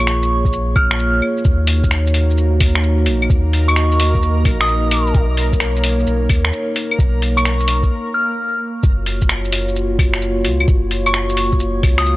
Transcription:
Already playing: A#1 A#3 F4 G#4 C#5
0.00 C#6
0.07 finger snap, shaker
0.22 shaker
0.45 kick, shaker
0.53 shaker
0.76 F6, kick, claves
0.91 finger snap
0.99 shaker
1.22 claves
1.38 shaker
1.44 D#2 A#3 D#4 F#4 A#4, kick, shaker
1.67 open hi-hat
1.84 kick, shaker
1.91 finger snap, shaker
2.07 shaker
2.14 open hi-hat
2.30 shaker
2.38 shaker
2.60 kick, open hi-hat, claves
2.75 finger snap
2.83 shaker
3.06 A#1, open hi-hat
3.22 claves, shaker
3.30 D#2 D#5, kick, shaker
3.53 open hi-hat
3.68 C#6, claves, shaker
3.76 finger snap, shaker
3.92 shaker
4.00 open hi-hat
4.15 kick, shaker
4.22 shaker
4.45 A#1, kick, open hi-hat, claves
4.61 D#6, finger snap
4.68 shaker
4.91 open hi-hat, claves
5.07 shaker
5.14 B1 A#3 A#4 C#5, kick, shaker
5.37 open hi-hat
5.53 kick, shaker
5.60 finger snap, shaker
5.76 shaker
5.84 open hi-hat
6.00 shaker
6.07 B1, shaker
6.29 D#2, kick, open hi-hat, claves
6.45 finger snap
6.52 shaker
6.76 open hi-hat
6.91 claves, shaker
6.99 B1, kick, shaker
7.22 open hi-hat
7.37 C#6, claves, shaker
7.45 finger snap, shaker
7.60 shaker
7.68 open hi-hat
7.83 kick, shaker
8.14 F6
8.83 F#1 A#3 F4 F#4 C#5, kick, shaker
9.06 open hi-hat
9.21 kick, shaker
9.29 finger snap, shaker
9.44 shaker
9.52 open hi-hat
9.68 shaker
9.76 shaker
9.99 kick, open hi-hat, claves
10.14 finger snap
10.22 shaker
10.45 C#2, open hi-hat
10.60 claves, shaker
10.68 F#1, kick, shaker
10.91 open hi-hat
11.06 C#6, claves, shaker
11.14 finger snap, shaker
11.29 shaker
11.37 open hi-hat
11.52 kick, shaker
11.60 shaker
11.83 C#2, kick, open hi-hat, claves
11.98 D#6, finger snap
12.06 shaker

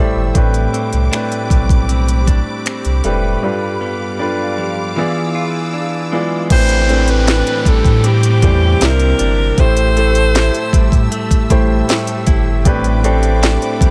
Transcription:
Already playing: A2 G3 A3 E4 G4 B4 C5 E5 G5 A5 E6
0.00 D5
0.16 G1
0.34 A1 A2 A3 C4 D4 G4 B4 B5 D6, kick, closed hi-hat
0.54 closed hi-hat
0.73 C4, closed hi-hat
0.93 C2, closed hi-hat
1.12 A2 A3 C4 D4 G4 B4, finger snap, closed hi-hat
1.32 closed hi-hat
1.50 B1 G3, kick, closed hi-hat
1.69 kick, closed hi-hat
1.89 C4, closed hi-hat
2.08 closed hi-hat
2.27 D4, kick, closed hi-hat
2.66 C4, finger snap, closed hi-hat
2.85 C2, closed hi-hat
3.04 F1 A2 G3 A3 C4 D4 G4 B4, closed hi-hat
3.42 G2 G3 D4 F4 A4 B4 F5 D6
3.81 B3
4.19 G3 D4 F4 A4 B4
4.58 F3
4.96 E3 B3 F4 G#4 D5 E6
5.35 F4
5.73 D4
6.12 E3 G#3 B3 F4 G#4 D5
6.50 A1 A2 E3 C4 D4 G4 B4 C5 G5 B5 D6, kick, closed hi-hat, crash, downlifter
6.69 closed hi-hat
6.88 A2 E3 C4 D4 G4 B4, closed hi-hat
7.08 B4, closed hi-hat
7.27 D4, snare, closed hi-hat
7.47 closed hi-hat
7.66 A1 G3 A4, kick, closed hi-hat
7.85 A2, kick, closed hi-hat
8.04 C4 G4, closed hi-hat
8.23 closed hi-hat
8.42 E2 A2 E3 G3 C4 D4 G4 C5, kick, closed hi-hat
8.81 C2 C3 A#3 D4 E4 A#4 E5 A#5, snare, closed hi-hat
8.89 C5
9.00 closed hi-hat
9.19 G1 D4, closed hi-hat
9.58 A1 A2 A3 E4 G4 C5 E5 A5 E6, kick, closed hi-hat
9.77 closed hi-hat
9.96 A2 A3 E4 G4 A4, closed hi-hat
10.15 closed hi-hat
10.35 E4, snare, closed hi-hat
10.55 closed hi-hat
10.73 A1 G3, kick, closed hi-hat
10.92 A2, kick, closed hi-hat
11.12 A3, closed hi-hat
11.31 kick, closed hi-hat
11.50 A1 A2 G3 A3 E4 G4 C5, kick, closed hi-hat
11.88 A3, snare, closed hi-hat
12.07 closed hi-hat
12.27 G1 E4, kick, closed hi-hat
12.65 A1 A2 A3 C4 D4 G4 B4 C5 B5 D6, kick, closed hi-hat
12.84 closed hi-hat
13.04 A2 A3 C4 D4 G4 A4, closed hi-hat
13.23 closed hi-hat
13.43 D4, snare, closed hi-hat
13.62 closed hi-hat
13.81 A1 G3, kick, closed hi-hat

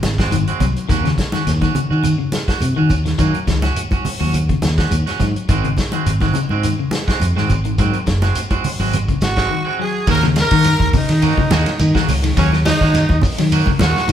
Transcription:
0.03 G#1, snare, closed hi-hat, high conga, shekere
0.18 G#3 C4 F#4, kick, snare, closed hi-hat, shekere
0.31 G#1 D#3, closed hi-hat, high conga, claves, shekere
0.47 G#3 C4 F#4, closed hi-hat, shekere
0.60 C2 F#3, kick, closed hi-hat, high conga, low conga, claves, shekere
0.76 muted fingered electric bass stroke, closed hi-hat, shekere
0.89 D#2 D#3 A#3 C#4 F#4, kick, snare, closed hi-hat, high conga, shekere
1.04 C#3, snare, closed hi-hat, claves, shekere
1.18 kick, snare, closed hi-hat, shekere
1.32 D#3 C#4 F#4, snare, closed hi-hat, high conga, shekere
1.47 D#2, snare, closed hi-hat, claves, shekere
1.61 D#3 C#4 F#4, kick, snare, closed hi-hat, high conga, shekere
1.75 C#3, closed hi-hat, low conga, shekere
1.90 D#3 C#4 F#4, shekere
2.04 D#3, closed hi-hat, high conga, low conga, claves, shekere
2.18 C#3, shekere
2.32 snare, closed hi-hat, high conga, shekere
2.48 F#4, kick, snare, closed hi-hat, shekere
2.60 C3, closed hi-hat, high conga, claves, shekere
2.76 D#3 C#4 F#4, shekere
2.89 D#2, kick, closed hi-hat, high conga, low conga, claves, shekere
3.06 D#3, snare, closed hi-hat, shekere
3.18 D#3 F#3 A#3 C#4 F#4, kick, closed hi-hat, high conga, shekere
3.34 closed hi-hat, claves, shekere
3.47 C#2 D#3, kick, snare, closed hi-hat, low conga, shekere
3.62 C#4 F#4, snare, closed hi-hat, high conga, shekere
3.76 closed hi-hat, claves, shekere
3.91 C#4 F#4, kick, closed hi-hat, high conga, shekere
4.05 open hi-hat, high conga, low conga, shekere
4.20 D#2 F#3 C#4 F#4, shekere
4.33 closed hi-hat, high conga, low conga, claves, shekere
4.49 C#3, kick, closed hi-hat, shekere
4.62 D#2, snare, closed hi-hat, high conga, shekere
4.78 C#4 F#4, kick, snare, closed hi-hat, shekere
4.91 D#2, muted clean electric guitar stroke, closed hi-hat, high conga, claves, shekere
5.06 C#4 F#4, snare, closed hi-hat, shekere
5.20 G#2 F#3, kick, snare, closed hi-hat, high conga, low conga, claves, shekere
5.36 muted fingered electric bass stroke, closed hi-hat, shekere
5.49 G#1 D#3 G#3 C4 F#4, kick, closed hi-hat, high conga, shekere
5.64 C#3, closed hi-hat, claves, shekere
5.77 kick, snare, closed hi-hat, low conga, shekere
5.92 D#3 G#3 C4 F#4, closed hi-hat, high conga, shekere
6.06 G#1, closed hi-hat, claves, shekere
6.20 D#3 G#3 C4 F#4, kick, snare, closed hi-hat, high conga, shekere
6.34 C#3, closed hi-hat, low conga, shekere
6.49 G#2 G#3 C4 F#4, high conga, shekere
6.63 D#3, closed hi-hat, high conga, claves, shekere
6.79 C#3, shekere
6.91 snare, closed hi-hat, high conga, shekere
7.08 G#3 C4 F#4, kick, snare, closed hi-hat, shekere
7.20 F2, closed hi-hat, high conga, claves, shekere
7.36 G#2 D#3 G#3 C4 F#4, snare, shekere
7.49 G#1, kick, closed hi-hat, high conga, low conga, claves, shekere
7.65 D#3, closed hi-hat, shekere
7.78 G#2 D#3 F#3 C4 F#4, muted clean electric guitar stroke, kick, closed hi-hat, high conga, shekere
7.93 closed hi-hat, claves, shekere
8.06 F#1, muted clean electric guitar stroke, kick, snare, closed hi-hat, low conga, shekere
8.22 G#3 C4 F#4, snare, closed hi-hat, high conga, shekere
8.35 closed hi-hat, claves, shekere
8.50 G#3 C4 F#4, kick, closed hi-hat, high conga, shekere
8.64 open hi-hat, high conga, low conga, shekere
8.79 G#1 F#3 G#3 C4 F#4, high conga, shekere
8.93 closed hi-hat, high conga, low conga, claves, shekere
9.08 C#3, kick, closed hi-hat, shekere
9.21 G#1 F#4, snare, closed hi-hat, high conga, shekere
9.36 G#3 C4 F#4, kick, snare, closed hi-hat, shekere
9.51 D#3
9.65 G#3 C4 F#4
9.79 F#3 G#4
10.07 D#2 D#3 A#3 C#4 F#4 A#4, kick, ride bell, shekere
10.12 A#4
10.23 C#3, snare, high conga, claves, shekere
10.36 snare, ride bell, high conga, shekere
10.40 A#4
10.51 D#3 A#3 C#4 F#4, kick, snare, ride bell, high conga, shekere
10.64 ride bell, high conga, claves, shekere
10.80 D#2 D#3, kick, shekere
10.93 C#3, muted fingered electric bass stroke, kick, open hi-hat, low conga, shekere
10.97 D#4
11.09 D#3, snare, ride bell, shekere
11.22 D#3 A#3 C#4 F#4, ride bell, claves, shekere
11.38 C#3, kick, high conga, shekere
11.50 D#2 D#3 A#3 C#4 F#4, snare, ride bell, high conga, low conga, shekere
11.66 snare, ride bell, shekere
11.79 D#3, ride bell, high conga, claves, shekere
11.95 D#3 A#3 C#4 F#4, kick, snare, shekere
12.08 C#2, open hi-hat, low conga, claves, shekere
12.23 D#3, snare, ride bell, shekere
12.37 D#2 F#3 A#3 C#4 F#4, muted clean electric guitar stroke, kick, ride bell, low conga, shekere
12.52 snare, high conga, claves, shekere
12.65 D#3 D#4, snare, ride bell, high conga, shekere
12.81 D#3 A#3 C#4 F#4, kick, snare, shekere
12.94 snare, ride bell, high conga, claves, shekere
13.09 D#2, kick, high conga, shekere
13.22 muted fingered electric bass stroke, kick, open hi-hat, low conga, shekere
13.38 D#3 F#3, snare, ride bell, shekere
13.52 D#3 A#3 F#4, muted clean electric guitar stroke, ride bell, claves, shekere
13.66 C#3, kick, high conga, shekere
13.79 D#2 D#3 A#3 C#4 F#4, snare, ride bell, high conga, low conga, shekere
13.96 snare, shekere
14.08 D#3, ride bell, high conga

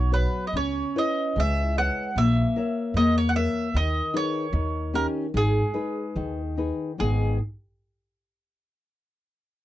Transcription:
Already playing: B1 F#3
0.12 F#4 B4 C#5
0.47 D#5
0.53 C#2 C#4 C#5
0.96 E4 B4 C#5 D#5
1.36 C#2 G#3 E5
1.78 B4 C#5 E5 F#5
2.16 A#1 A#3 E5
2.56 A#4 C#5 E5
2.94 E2 A#3 D#5
3.18 C#5
3.29 F#5
3.35 A#4 C#5 E5
3.74 D#2 D#3 D#5
4.14 D#4 G#4 B4 C#5
4.53 D#2 D#3
4.94 C#4 D#4 G4 A#4
5.34 G#1 G#3 G#4
5.74 D#4 G#4 B4
6.16 D#2 D#3
6.57 D#4 G#4 B4
6.98 G#1 G#2 D#3 G#3 B3 D#4 G#4

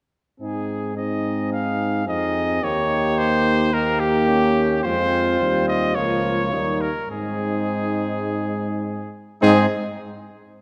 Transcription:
0.40 G#2 C4 D#4 G#4
0.96 C4 D#4 G#4 D#5
1.52 F5
2.07 F2 C4 D#4 G#4 D#5
2.62 D#2 A#3 D#4 G4 C#5
3.18 C5
3.73 A#3 D#4 G4 A#4
4.00 G4
4.28 C#4
4.83 F2 G#3 C4 F4 C5
5.40 D#2 G3
5.68 D#5
5.95 C#2 F3 A#3 F4 C#5
6.52 D#2 G3 A#3 D#4
6.81 A#4
7.09 G#2 G#3 C4 D#4 G#4
9.41 G#2 G#3 C4 D#4 G#4

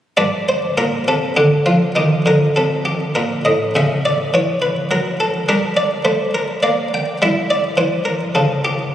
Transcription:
0.17 G2 D4 D5
0.49 C5
0.78 A#2 A#4
1.08 C3 A4
1.37 D3 G4
1.66 F3 F4
1.95 D#3 D#4 G4
2.26 D3 A#4
2.56 C3 A4
2.85 G4
3.15 A#2 A#4
3.45 A2 D#5
3.75 C#3 C#4 E5
4.05 D5
4.34 E3 C#5
4.62 B4
4.91 F#3 A#4
5.20 A4
5.49 G3 D4 A#4
5.77 D5
6.05 A3 C5
6.35 A#4
6.63 A#3 D5
6.94 G5
7.22 G3 E4 E5
7.50 D5
7.77 E3 C5
8.05 A#4
8.35 C#3 A4
8.65 G4

